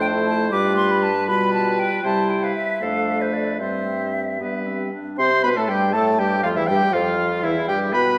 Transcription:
Already playing: F2 A3 D4 C5
0.01 G5
0.14 E4
0.27 A5
0.51 G2 G3 F4 B4 D6
0.77 C6
0.91 B5
1.03 A5
1.28 B2 G3 F4 B4 B5
1.54 A5
1.79 G5
2.03 C3 G3 E4 C5 A5
2.30 G5
2.43 B4 F5
2.55 E5
2.81 F2 A3 D4 A4 F5
3.19 B4 C5
3.34 D5
3.59 G2 G3 C4 C5 E5
4.40 G2 G3 B3 B4
4.66 C4
4.92 D4
5.17 C3 C4 C5 C6
5.43 B2 B3 B4 B5
5.55 A2 A3 A4 A5
5.68 G2 G3 G4 G5
5.92 A2 A3 A4 A5
6.18 G2 G3 G4 G5
6.43 F2 F3 F4 F5
6.56 E2 E3 E4 E5
6.67 G2 G3 G4 G5
6.93 F2 F3 F4 F5
7.43 E2 E3 E4 E5
7.68 G2 G3 G4 G5
7.93 B2 B3 B4 B5

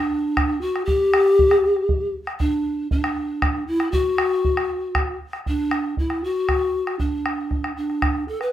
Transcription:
Already playing: D4
0.37 bombo rim, bombo low
0.61 F#4
0.76 bombo rim
0.85 G4, bombo low
1.14 bombo rim
1.39 bombo low
1.51 bombo rim
1.64 bombo rim
1.76 bombo rim
1.89 bombo low
2.27 bombo rim
2.40 D4, bombo low
2.91 D4, bombo low
3.04 bombo rim
3.42 bombo rim, bombo low
3.67 E4
3.80 bombo rim
3.92 F#4, bombo low
4.18 bombo rim
4.45 bombo low
4.57 bombo rim
4.95 bombo rim, bombo low
5.33 bombo rim
5.46 D4, bombo low
5.71 bombo rim
5.97 E4, bombo low
6.10 bombo rim
6.24 F#4
6.49 bombo rim, bombo low
6.87 bombo rim
7.00 D4, bombo low
7.26 bombo rim
7.51 bombo rim, bombo low
7.64 bombo rim
7.77 D4
7.90 bombo rim
8.02 bombo rim, bombo low
8.28 A4, bombo rim
8.41 B4, bombo rim

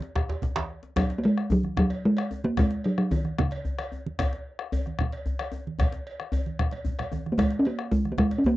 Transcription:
Already playing: F#3
0.00 djembe slap, high conga
0.15 bombo rim, bombo low, djembe slap, djembe tone
0.29 bombo rim, cowbell, high conga, djembe tone
0.42 bombo rim, djembe slap, low conga, djembe bass
0.56 bombo rim, cowbell, djembe slap, high conga, djembe tone
0.70 bombo rim
0.83 djembe slap
0.96 F#3, bombo rim, bombo low, cowbell, low conga, djembe bass
1.10 bombo rim, djembe slap
1.18 A#3
1.24 G#3, cowbell
1.38 bombo rim
1.50 F#3, djembe tone, djembe bass
1.63 bombo rim, djembe slap, high conga
1.77 F#3, bombo rim, bombo low, low conga
1.90 cowbell, djembe slap
2.04 G#3, djembe slap
2.17 bombo rim, cowbell, high conga
2.31 djembe tone
2.44 A#3, high conga
2.57 G#3, bombo rim, bombo low, cowbell, low conga, djembe bass
2.71 bombo rim, djembe slap
2.84 F#3, cowbell
2.98 F#3, bombo rim
3.11 D#3, cowbell, djembe tone, djembe bass
3.25 bombo rim, djembe slap, high conga
3.38 C#3, bombo rim, bombo low, low conga
3.51 cowbell, djembe slap
3.65 djembe slap, djembe bass
3.79 bombo rim, cowbell, high conga
3.92 djembe tone
4.06 high conga
4.19 bombo rim, bombo low, cowbell, djembe bass, low conga
4.33 bombo rim, djembe slap
4.59 bombo rim
4.72 cowbell, djembe tone, djembe bass
4.86 bombo rim, djembe slap, high conga
4.99 bombo rim, bombo low, low conga
5.12 cowbell, djembe slap
5.26 djembe slap, djembe bass
5.39 bombo rim, cowbell, high conga
5.52 djembe tone
5.67 high conga
5.79 bombo rim, bombo low, cowbell, djembe slap, djembe bass, low conga
5.92 djembe slap
6.07 cowbell
6.20 bombo rim, high conga
6.32 cowbell, djembe tone, djembe bass
6.46 high conga
6.59 bombo rim, bombo low, low conga
6.71 cowbell, djembe slap, low conga
6.85 djembe bass, low conga
6.99 bombo rim, cowbell, low conga
7.12 bombo rim, djembe tone, high conga
7.26 bombo rim, high conga
7.32 A#3
7.38 G#3, bombo rim, bombo low, cowbell, djembe bass, low conga
7.50 bombo rim, djembe slap
7.59 C#4
7.65 A#3, cowbell
7.79 bombo rim
7.91 G#3, djembe tone, djembe bass
8.05 bombo rim, djembe slap, high conga
8.12 A#3
8.18 G#3, bombo rim, bombo low, low conga
8.31 cowbell, djembe slap
8.38 C#4
8.44 A#3, djembe slap, djembe bass

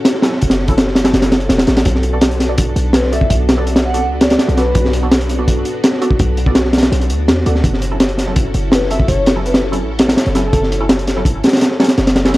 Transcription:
Already playing: C#4 E4 F#4 A4
0.05 snare, closed hi-hat
0.14 snare
0.22 F#3 C#4 E4 A4, snare, closed hi-hat
0.33 snare
0.41 F#1, kick, closed hi-hat
0.50 snare, closed hi-hat
0.59 snare
0.68 F#3 C#4 E4 A4, kick, closed hi-hat
0.78 snare, closed hi-hat
0.87 snare
0.95 snare, closed hi-hat
1.04 F#3 C#4 E4 A4, snare, closed hi-hat
1.14 F#1, snare, closed hi-hat
1.22 snare, closed hi-hat
1.32 snare, closed hi-hat
1.40 closed hi-hat
1.49 E1, snare, closed hi-hat
1.58 snare, closed hi-hat
1.67 A1, snare, closed hi-hat
1.77 snare, closed hi-hat
1.85 B1 B3 D4 F#4, kick, closed hi-hat
1.95 snare
2.03 closed hi-hat
2.13 B3 F#4 A4 D5
2.21 snare, closed hi-hat
2.31 closed hi-hat
2.40 snare, closed hi-hat
2.49 B3 F#4 A4 D5
2.58 kick, closed hi-hat
2.76 B1, closed hi-hat
2.93 B4, snare, closed hi-hat
3.03 snare
3.12 B3 F#4 A4 D5 E5, closed hi-hat
3.21 kick
3.30 B1, kick, closed hi-hat
3.49 snare, closed hi-hat
3.58 B3 F#4 A4 D5
3.67 closed hi-hat
3.76 snare, closed hi-hat
3.85 F#5
3.94 B3 F#4 A4 D5, closed hi-hat
4.03 C#2
4.21 D5, snare, closed hi-hat
4.30 snare, closed hi-hat
4.39 snare, closed hi-hat
4.48 B1, closed hi-hat
4.57 B3 F#4 A4 B4 D5, snare, closed hi-hat
4.75 B1, kick, closed hi-hat
4.85 snare
4.93 closed hi-hat
5.03 B3 F#4 A4 D5
5.11 snare, closed hi-hat
5.21 closed hi-hat
5.29 closed hi-hat
5.39 B3 F#4 A4 D5
5.48 kick, closed hi-hat
5.65 closed hi-hat
5.84 snare, closed hi-hat
5.93 snare
6.01 B3 F#4 A4 D5, closed hi-hat
6.11 kick
6.19 B1, kick, closed hi-hat
6.37 closed hi-hat
6.46 B3 F#4 A4 D5, kick
6.55 snare, closed hi-hat
6.65 snare
6.73 snare, closed hi-hat
6.78 snare, closed hi-hat
6.83 snare, closed hi-hat
6.92 B1, closed hi-hat
7.01 closed hi-hat
7.10 D2, closed hi-hat
7.28 E2, snare, closed hi-hat
7.37 snare
7.46 D2 B3 F#4 A4 D5, closed hi-hat
7.55 snare
7.64 F#1 C#4 E4 A4, kick, closed hi-hat
7.73 snare
7.82 closed hi-hat
7.91 F#3 C#4 E4 A4
8.00 snare, closed hi-hat
8.09 closed hi-hat
8.18 snare, closed hi-hat
8.27 F#3 C#4 E4 A4
8.36 kick, closed hi-hat
8.54 F#1, closed hi-hat
8.72 B4, snare, closed hi-hat
8.81 snare
8.91 F#3 C#4 E4 A4 E5, closed hi-hat
9.00 kick
9.08 F#1 C#5, kick, closed hi-hat
9.26 snare, closed hi-hat
9.36 F#3 C#4 E4 A4
9.45 B4, closed hi-hat
9.54 B4, snare, closed hi-hat
9.72 F#3 C#4 E4 A4, closed hi-hat
9.81 A1
9.99 snare, closed hi-hat
10.08 snare, closed hi-hat
10.17 snare, closed hi-hat
10.26 F#1, closed hi-hat
10.35 F#3 C#4 E4 A4, snare, closed hi-hat
10.45 A4
10.53 F#1, kick, closed hi-hat
10.63 snare
10.72 closed hi-hat
10.80 F#3 C#4 E4 A4
10.89 snare, closed hi-hat
10.99 closed hi-hat
11.07 snare, closed hi-hat
11.17 F#3 C#4 E4 A4
11.25 kick, closed hi-hat
11.44 snare, closed hi-hat
11.47 snare, closed hi-hat
11.53 snare, closed hi-hat
11.57 snare, closed hi-hat
11.61 snare, closed hi-hat
11.71 snare
11.80 F#3 C#4 E4 A4, snare, closed hi-hat
11.83 snare, closed hi-hat
11.88 snare, closed hi-hat
11.98 F#1, snare, closed hi-hat
12.07 snare, closed hi-hat
12.16 snare, closed hi-hat
12.25 F#3 C#4 E4 A4, snare, closed hi-hat
12.34 snare, closed hi-hat

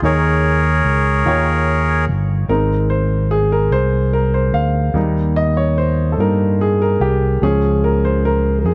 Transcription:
0.02 D#2 D#3 D#4 G#4 A#4 C#5
0.84 C#2
1.25 D#2 D#3 D#4 F4 C#5 G5
2.08 G1
2.48 G#1 G#3 C4 D#4 A#4
2.90 C5
3.31 G#4
3.52 A#4
3.71 C2 C5
4.13 A#4
4.34 C5
4.53 D2 F5
4.94 D#2 G3 A#3 D#4
5.36 D#5
5.57 C#5
5.78 C5
6.12 A4
6.17 G2 G3 A#3 D#4 A#4
6.61 G#4
6.82 A#4
7.00 C2 G4
7.42 C#2 F3 G#3 C#4 G#4
7.84 A#4
8.05 C5
8.25 A#4
8.59 A#4
8.64 F2 G#4

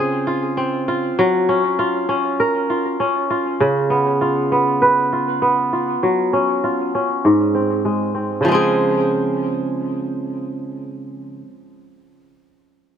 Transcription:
Already playing: C#3 C4 F4 G#4
0.27 F4
0.57 C4
0.88 F4
1.19 F#3
1.49 C#4
1.79 F4
2.09 C#4
2.40 A#4
2.70 F4
3.00 C#4
3.30 F4
3.60 C#3
3.90 B3
4.21 F4
4.52 B3
4.82 B4
5.13 F4
5.42 B3
5.73 F4
6.03 F#3
6.33 C#4
6.64 F4
6.95 C#4
7.25 G#2
7.55 C4
7.85 G#3
8.15 C4
8.41 C#3
8.45 F3 G#3
8.52 C4 G#4

